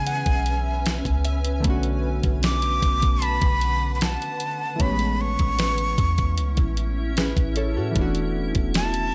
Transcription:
0.00 0.24 C#3 loud
0.00 1.58 E3 medium
0.00 1.59 G#3 medium
0.00 1.61 B3 medium
0.00 1.61 C#4 medium
0.00 1.62 C#4 medium
0.00 1.63 G#4 medium
0.00 4.76 B4 medium
0.00 1.61 E5 medium
0.00 1.25 G#5 loud
0.00 1.61 G#5 medium
0.07 2.00 F#5 medium
0.07 closed hi-hat medium
0.26 1.02 B1 loud
0.26 kick loud
0.26 closed hi-hat soft
0.46 closed hi-hat medium
0.86 snare loud
0.86 closed hi-hat medium
1.05 1.62 C#2 loud
1.05 kick medium
1.05 closed hi-hat soft
1.25 2.00 E5 medium
1.25 closed hi-hat soft
1.25 open hi-hat medium
1.45 closed hi-hat medium
1.60 4.74 D3 medium
1.60 4.75 A3 medium
1.64 2.21 B1 loud
1.64 4.77 D3 medium
1.64 4.76 B3 medium
1.64 4.78 C#4 medium
1.64 4.77 F#5 medium
1.64 4.77 A5 loud
1.64 kick loud
1.64 closed hi-hat medium
1.70 4.79 F#4 medium
1.83 closed hi-hat medium
2.23 2.81 B1 loud
2.23 kick medium
2.23 closed hi-hat medium
2.43 3.25 D6 loud
2.43 snare loud
2.43 closed hi-hat medium
2.62 closed hi-hat medium
2.82 3.40 B1 loud
2.82 kick loud
2.82 closed hi-hat medium
3.02 kick loud
3.02 closed hi-hat medium
3.22 5.16 A5 medium
3.22 3.95 B5 loud
3.22 closed hi-hat medium
3.41 4.18 B1 loud
3.41 kick loud
3.41 closed hi-hat soft
3.61 closed hi-hat medium
3.95 4.04 B5 medium
4.01 4.83 A5 loud
4.01 snare loud
4.01 closed hi-hat medium
4.22 closed hi-hat soft
4.40 closed hi-hat medium
4.76 7.90 E3 medium
4.76 7.91 A3 medium
4.76 closed hi-hat medium
4.80 5.37 A1 loud
4.80 7.92 B3 medium
4.80 7.93 C#4 medium
4.80 9.15 E4 medium
4.80 7.23 C#5 medium
4.80 9.15 E5 medium
4.80 5.23 B5 loud
4.80 kick loud
4.85 4.89 G4 medium
4.92 7.19 G#3 medium
4.99 closed hi-hat medium
5.21 6.78 C#6 loud
5.39 5.96 A1 loud
5.39 kick medium
5.39 closed hi-hat soft
5.59 8.02 B4 medium
5.59 snare loud
5.59 closed hi-hat medium
5.78 closed hi-hat medium
5.98 6.40 E2 loud
5.98 kick loud
5.98 closed hi-hat medium
6.18 kick loud
6.18 closed hi-hat medium
6.38 6.57 C#2 loud
6.38 closed hi-hat medium
6.57 7.33 A1 loud
6.57 kick loud
6.57 closed hi-hat soft
6.77 closed hi-hat medium
7.17 7.55 G#4 medium
7.17 7.55 B4 medium
7.17 snare loud
7.17 closed hi-hat medium
7.37 7.78 A1 loud
7.37 kick medium
7.37 closed hi-hat soft
7.56 8.31 A4 medium
7.56 7.76 A4 medium
7.56 7.75 C#5 medium
7.56 closed hi-hat medium
7.76 7.95 A2 loud
7.76 8.00 F#4 medium
7.76 8.14 A4 medium
7.91 9.15 E3 medium
7.91 9.15 A3 medium
7.96 8.53 E1 loud
7.96 9.15 B3 medium
7.96 9.15 D4 medium
7.96 9.15 F#5 loud
7.96 kick loud
7.96 closed hi-hat medium
8.01 9.15 F#4 medium
8.15 closed hi-hat medium
8.55 9.12 E1 loud
8.55 kick medium
8.55 closed hi-hat medium
8.74 9.15 A5 loud
8.74 snare loud
8.74 closed hi-hat medium
8.94 closed hi-hat medium

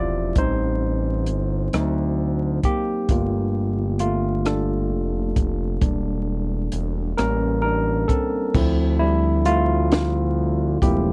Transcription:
0.00 0.32 E1 medium
0.00 0.38 F3 soft
0.00 0.38 C4 soft
0.00 0.38 E4 soft
0.00 0.13 F4 medium
0.00 0.38 G4 medium
0.00 0.12 D5 medium
0.00 0.38 E5 loud
0.36 1.30 A1 medium
0.36 1.69 G3 soft
0.36 1.69 C4 soft
0.36 1.70 D#4 medium
0.36 2.71 C5 medium
0.36 kick loud
0.36 closed hi-hat medium
1.26 1.69 G1 medium
1.26 closed hi-hat medium
1.73 2.60 D2 loud
1.73 2.33 F#3 soft
1.73 2.34 C4 soft
1.73 2.34 D#4 medium
1.73 cross-stick medium
1.73 closed hi-hat medium
2.63 3.09 A#3 medium
2.63 4.05 G4 medium
2.63 kick medium
2.63 closed hi-hat medium
3.09 4.94 G1 medium
3.09 3.70 A3 soft
3.09 3.70 A#3 soft
3.09 3.71 F4 medium
3.09 kick medium
3.09 closed hi-hat medium
3.99 4.43 A3 medium
3.99 4.47 F4 medium
3.99 closed hi-hat medium
4.45 5.81 D4 medium
4.45 7.60 A4 medium
4.45 cross-stick loud
4.45 closed hi-hat medium
4.92 5.33 F1 medium
5.36 5.78 F1 medium
5.36 kick medium
5.36 closed hi-hat medium
5.81 6.69 E1 medium
5.81 7.14 G3 soft
5.81 7.14 A#3 soft
5.81 7.14 D4 soft
5.81 kick loud
5.81 closed hi-hat medium
6.72 7.14 E1 medium
6.72 closed hi-hat medium
7.17 8.05 A1 loud
7.17 7.79 G3 soft
7.17 7.79 A#3 soft
7.17 7.80 C#4 medium
7.17 7.60 A#4 medium
7.17 cross-stick medium
7.17 closed hi-hat medium
7.62 8.06 D4 medium
7.62 8.10 A#4 medium
8.08 8.54 C4 medium
8.08 9.02 A4 medium
8.08 kick medium
8.08 closed hi-hat medium
8.54 10.78 D2 medium
8.54 9.15 F3 medium
8.54 9.15 C4 soft
8.54 8.98 E4 medium
8.54 kick loud
8.54 crash medium
8.99 9.43 G3 medium
8.99 9.46 E4 medium
9.45 10.79 A3 medium
9.45 10.86 F4 loud
9.45 closed hi-hat medium
9.92 snare loud
9.92 closed hi-hat medium
10.82 11.13 E1 medium
10.82 11.13 F3 soft
10.82 11.13 A#3 medium
10.82 11.13 C4 soft
10.82 11.13 E4 medium
10.82 11.13 G4 medium
10.82 kick medium
10.82 closed hi-hat medium

